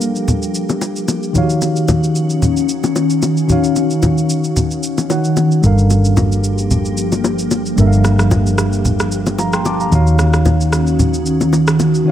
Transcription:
Already playing: ambient pad F3 A#3 G4, tine electric piano G3 D4 A4 A#4 F5
0.01 shaker
0.16 shaker
0.28 low conga, shaker
0.42 shaker
0.55 shaker
0.69 high bongo, low bongo, shaker
0.81 high bongo, shaker
0.96 shaker
1.08 high bongo, low bongo, shaker
1.23 shaker
1.33 tine electric piano D#3 D#4 F4 C#5, ambient pad D#3 C#4 F#4, low conga, shaker
1.38 tine electric piano F#4 F5
1.50 shaker
1.62 low bongo, shaker
1.76 shaker
1.88 high bongo, low conga, shaker
2.04 shaker
2.15 shaker
2.30 shaker
2.42 low conga, shaker
2.57 shaker
2.69 shaker
2.84 high bongo, low bongo, shaker
2.96 high bongo, shaker
3.10 shaker
3.22 high bongo, low bongo, shaker
3.37 shaker
3.47 tine electric piano D#3 D#4 F#4 C#5, low conga, shaker
3.52 tine electric piano F5
3.64 shaker
3.76 low bongo, shaker
3.90 shaker
4.02 high bongo, low conga, shaker
4.18 shaker
4.30 shaker
4.44 shaker
4.56 low conga, shaker
4.71 shaker
4.83 shaker
4.98 high bongo, low bongo, shaker
5.09 tine electric piano D#3 D#4 F#4 C#5 F#5, high bongo, shaker
5.24 shaker
5.37 high bongo, low bongo, shaker
5.51 shaker
5.62 fingered electric bass G1, ambient pad F3 A#3 G4, tine electric piano G3 D4 A4 A#4, low conga, shaker
5.67 tine electric piano F5
5.78 shaker
5.90 low bongo, shaker
6.05 shaker
6.17 high bongo, low conga, shaker
6.32 shaker
6.44 shaker
6.58 shaker
6.71 low conga, shaker
6.85 shaker
6.97 shaker
7.12 high bongo, low bongo, shaker
7.24 high bongo, shaker
7.39 shaker
7.51 high bongo, low bongo, shaker
7.66 shaker
7.76 fingered electric bass G1, tine electric piano G3 D4 A4 A#4, low conga, shaker
7.81 tine electric piano E5
7.87 tine electric piano F5
7.93 shaker
8.04 cross-stick, low bongo, shaker
8.19 cross-stick, shaker
8.31 high bongo, low conga, shaker
8.46 shaker
8.58 cross-stick, shaker
8.73 shaker
8.85 low conga, shaker
8.99 cross-stick, shaker
9.12 shaker
9.26 high bongo, low bongo, shaker
9.38 tine electric piano F5 A#5, high bongo, shaker
9.53 tine electric piano G5 C6, cross-stick, shaker
9.65 tine electric piano A5 D6, high bongo, low bongo, shaker
9.80 tine electric piano F5 A#5, shaker
9.90 fingered electric bass D#2, tine electric piano D#3 D#4 F#4 C#5, ambient pad D#3 C#4 F#4, low conga, shaker
9.95 tine electric piano F5
10.07 shaker
10.19 cross-stick, low bongo, shaker
10.33 cross-stick, shaker
10.45 high bongo, low conga, shaker
10.61 shaker
10.72 cross-stick, shaker
10.87 shaker
10.99 low conga, shaker
11.14 shaker
11.26 shaker
11.41 high bongo, low bongo, shaker
11.53 high bongo, shaker
11.67 cross-stick, shaker
11.80 high bongo, low bongo, shaker
11.94 shaker
12.04 tine electric piano D#3 D#4 F#4 C#5

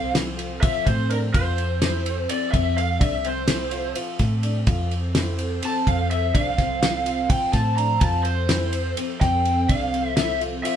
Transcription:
Already playing: picked electric bass C2, analog synth pad F3 C4 A4 C5, lead electric guitar F5
0.13 grand piano E4, snare, ride
0.37 grand piano F4, ride
0.61 grand piano F4, lead electric guitar E5, kick, ride
0.86 picked electric bass A2, lead electric guitar C5, kick, ride
1.10 grand piano D4, lead electric guitar A#4, ride
1.33 picked electric bass F2, analog synth pad F3 C4 A4 E5, grand piano F4, lead electric guitar C5, kick, ride
1.58 ride
1.82 grand piano E4, snare, ride
2.06 ride
2.29 grand piano C4, lead electric guitar D5, ride
2.52 picked electric bass F2, grand piano C4, lead electric guitar E5, kick, ride
2.78 lead electric guitar F5, ride
2.99 picked electric bass C2, grand piano D4, lead electric guitar E5, kick, ride
3.24 grand piano C4, lead electric guitar C5, ride
3.48 grand piano E4, snare, ride
3.71 grand piano F4, ride
3.95 grand piano F4, ride
4.19 picked electric bass A2, kick, snare, ride
4.43 grand piano D4, ride
4.65 picked electric bass F2, analog synth pad F3 C4 A4 C5, grand piano F4, kick, ride
4.91 ride
5.15 grand piano E4, snare, ride
5.39 ride
5.62 grand piano C4, lead electric guitar A5, ride
5.85 picked electric bass F2, grand piano C4, lead electric guitar F5, kick, ride
6.11 lead electric guitar E5, ride
6.34 picked electric bass C2, grand piano D4, lead electric guitar F5, kick, ride
6.58 grand piano C4, kick, snare, ride
6.82 grand piano E4, snare, ride
7.06 grand piano F4, ride
7.30 grand piano F4, lead electric guitar G5, kick, ride
7.53 picked electric bass A2, lead electric guitar A5, kick, snare, ride
7.76 grand piano D4, lead electric guitar A#5, ride
7.99 picked electric bass F2, analog synth pad F3 C4 A4 C5, grand piano F4, lead electric guitar A5, kick, ride
8.23 lead electric guitar C5, ride
8.49 grand piano E4, snare, ride
8.73 ride
8.97 grand piano C4, ride
9.21 picked electric bass F2, grand piano C4, lead electric guitar G5, kick, snare, ride
9.45 ride
9.69 picked electric bass C2, grand piano D4, lead electric guitar F5, kick, ride
9.93 grand piano C4, ride
10.06 lead electric guitar E5
10.17 grand piano E4, lead electric guitar E5, snare, ride
10.41 grand piano F4, ride
10.63 grand piano F4, lead electric guitar E5, ride

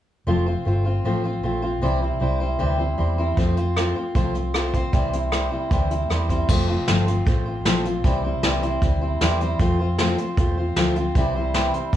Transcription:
0.27 fingered electric bass F1, steel-string acoustic guitar F3 A3 C4 F4 C5
0.46 steel-string acoustic guitar C4 F4 C5
0.65 fingered electric bass G1, steel-string acoustic guitar A3 C4 F4 C5
0.84 steel-string acoustic guitar C4 F4 C5
1.04 fingered electric bass A1, steel-string acoustic guitar F3 A3 C4 F4 C5
1.24 steel-string acoustic guitar C4 F4 C5
1.43 fingered electric bass A#1, steel-string acoustic guitar A3 C4 F4 C5
1.62 steel-string acoustic guitar C4 F4 C5
1.82 fingered electric bass C2, steel-string acoustic guitar C3 E3 G3 C4 E4 C5
2.02 steel-string acoustic guitar G3 C4 E4 C5
2.20 fingered electric bass C2, steel-string acoustic guitar G3 C4 E4 C5
2.40 steel-string acoustic guitar G3 C4 E4 C5
2.59 fingered electric bass D2, steel-string acoustic guitar C3 E3 G3 C4 E4 C5
2.78 steel-string acoustic guitar G3 C4 E4 C5
2.98 fingered electric bass E2, steel-string acoustic guitar G3 C4 E4 C5
3.18 steel-string acoustic guitar G3 C4 E4 C5
3.37 fingered electric bass F2, steel-string acoustic guitar F3 A3 C4 F4 C5, kick, closed hi-hat
3.57 steel-string acoustic guitar C4 F4 C5, closed hi-hat
3.76 steel-string acoustic guitar A3 C4 F4 C5, cross-stick, closed hi-hat
3.96 steel-string acoustic guitar C4 F4 C5
4.15 fingered electric bass C2, steel-string acoustic guitar F3 A3 C4 F4 C5, kick, closed hi-hat
4.34 steel-string acoustic guitar C4 F4 C5, closed hi-hat
4.54 steel-string acoustic guitar A3 C4 F4 C5, cross-stick, closed hi-hat
4.74 steel-string acoustic guitar C4 F4 C5, kick, closed hi-hat
4.93 fingered electric bass C2, steel-string acoustic guitar C3 E3 G3 C4 E4 C5, kick, closed hi-hat
5.13 steel-string acoustic guitar G3 C4 E4 C5, closed hi-hat
5.32 steel-string acoustic guitar G3 C4 E4 C5, cross-stick, closed hi-hat
5.51 steel-string acoustic guitar G3 C4 E4 C5
5.71 fingered electric bass D2, steel-string acoustic guitar C3 E3 G3 C4 E4 C5, kick, closed hi-hat
5.90 steel-string acoustic guitar G3 C4 E4 C5, closed hi-hat
6.10 fingered electric bass E2, steel-string acoustic guitar G3 C4 E4 C5, cross-stick, closed hi-hat
6.29 steel-string acoustic guitar G3 C4 E4 C5, kick, closed hi-hat
6.49 fingered electric bass F1, steel-string acoustic guitar F3 A3 C4 F4 C5, kick, crash
6.68 steel-string acoustic guitar C4 F4 C5
6.88 fingered electric bass G1, steel-string acoustic guitar F3 A3 C4 F4 C5, snare, closed hi-hat
7.07 steel-string acoustic guitar C4 F4 C5, closed hi-hat
7.25 fingered electric bass A1, steel-string acoustic guitar A3 C4 F4 C5, kick, closed hi-hat
7.46 steel-string acoustic guitar C4 F4 C5
7.65 fingered electric bass A#1, steel-string acoustic guitar F3 A3 C4 F4 C5, snare, closed hi-hat
7.84 steel-string acoustic guitar C4 F4 C5, closed hi-hat
8.04 fingered electric bass C2, steel-string acoustic guitar C3 E3 G3 C4 E4 C5, kick, closed hi-hat
8.24 steel-string acoustic guitar G3 C4 E4 C5
8.43 fingered electric bass C2, steel-string acoustic guitar C3 E3 G3 C4 E4 C5, snare, closed hi-hat
8.62 steel-string acoustic guitar G3 C4 E4 C5, closed hi-hat
8.81 fingered electric bass D2, steel-string acoustic guitar G3 C4 E4 C5, kick, closed hi-hat
9.01 steel-string acoustic guitar G3 C4 E4 C5
9.21 fingered electric bass E2, steel-string acoustic guitar C3 E3 G3 C4 E4 C5, snare, closed hi-hat
9.40 steel-string acoustic guitar G3 C4 E4 C5, closed hi-hat
9.59 fingered electric bass F2, steel-string acoustic guitar F3 A3 C4 F4 C5, kick, closed hi-hat
9.79 steel-string acoustic guitar C4 F4 C5
9.98 steel-string acoustic guitar F3 A3 C4 F4 C5, snare, closed hi-hat
10.18 steel-string acoustic guitar C4 F4 C5, closed hi-hat
10.37 fingered electric bass E2, steel-string acoustic guitar A3 C4 F4 C5, kick, closed hi-hat
10.57 steel-string acoustic guitar C4 F4 C5
10.76 fingered electric bass D2, steel-string acoustic guitar F3 A3 C4 F4 C5, snare, closed hi-hat
10.96 steel-string acoustic guitar C4 F4 C5, closed hi-hat
11.15 fingered electric bass C2, steel-string acoustic guitar C3 E3 G3 C4 E4 C5, kick, closed hi-hat
11.35 steel-string acoustic guitar G3 C4 E4 C5
11.54 steel-string acoustic guitar C3 E3 G3 C4 E4 C5, snare, closed hi-hat
11.73 steel-string acoustic guitar G3 C4 E4 C5, closed hi-hat
11.93 fingered electric bass G1, steel-string acoustic guitar G3 C4, kick, closed hi-hat

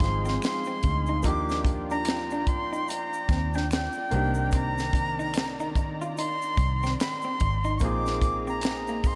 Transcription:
Already playing: grand piano G3, analog synth pad D#4 F5 G#5, flute C6
0.00 fingered electric bass G#1, grand piano F3 G#3 C4 D#4 G#4, muted clean electric guitar stroke, kick, snare, closed hi-hat
0.25 clean electric guitar C4, snare, shaker
0.42 flute C6, finger snap, snare, closed hi-hat, shaker
0.64 clean electric guitar C4, shaker
0.83 fingered electric bass D2, muted clean electric guitar stroke, kick, closed hi-hat
1.06 clean electric guitar D#4, shaker
1.23 fingered electric bass D#2, grand piano F3 A#3 D4 D#4, clean electric guitar D#4, analog synth pad F4 D5 G5, flute D6, kick, closed hi-hat, shaker
1.27 grand piano G4
1.49 snare, shaker
1.65 muted clean electric guitar stroke, kick, closed hi-hat
1.90 clean electric guitar D4, flute A#5, shaker
2.05 finger snap, snare, closed hi-hat, shaker
2.31 clean electric guitar D4, shaker
2.47 flute C6, muted clean electric guitar stroke, kick, closed hi-hat
2.73 clean electric guitar D#4, shaker
2.88 flute A#5, muted clean electric guitar stroke, closed hi-hat, shaker
3.13 shaker
3.29 fingered electric bass D#2, clean electric guitar C4, kick, snare, closed hi-hat
3.54 clean electric guitar D4, flute G5, snare, shaker
3.71 flute G5, finger snap, snare, closed hi-hat, shaker
3.92 shaker
4.11 fingered electric bass C2, analog synth pad D#3 A#5, grand piano A#3 C4 D4 D#4, clean electric guitar A#3, closed hi-hat
4.15 grand piano G4
4.34 shaker
4.51 clean electric guitar C4, flute A#5, kick, closed hi-hat, shaker
4.78 snare, shaker
4.93 muted clean electric guitar stroke, kick, closed hi-hat
5.19 clean electric guitar D#4, shaker
5.34 finger snap, snare, closed hi-hat, shaker
5.60 clean electric guitar D#4, shaker
5.75 muted clean electric guitar stroke, kick, closed hi-hat
6.02 clean electric guitar F4, shaker
6.17 clean electric guitar D#4, flute C6, closed hi-hat, shaker
6.42 shaker
6.57 fingered electric bass C2, muted clean electric guitar stroke, kick, closed hi-hat
6.83 clean electric guitar C4, snare, shaker
7.00 flute C6, finger snap, snare, closed hi-hat, shaker
7.22 clean electric guitar C4, shaker
7.40 fingered electric bass G#1, muted clean electric guitar stroke, kick, closed hi-hat
7.64 clean electric guitar D#4, shaker
7.78 fingered electric bass A#1, grand piano A#3 C4, analog synth pad G#4 D#5 A#5, flute C#6, kick, closed hi-hat, shaker
7.82 clean electric guitar A#3, grand piano D#4 F4 G#4, flute D6
8.06 snare, shaker
8.22 muted clean electric guitar stroke, kick, closed hi-hat, shaker
8.47 clean electric guitar C4, flute A#5, shaker
8.61 finger snap, snare, closed hi-hat, shaker
8.87 clean electric guitar A#3, shaker
9.04 flute C6, muted clean electric guitar stroke, kick, open hi-hat, shaker

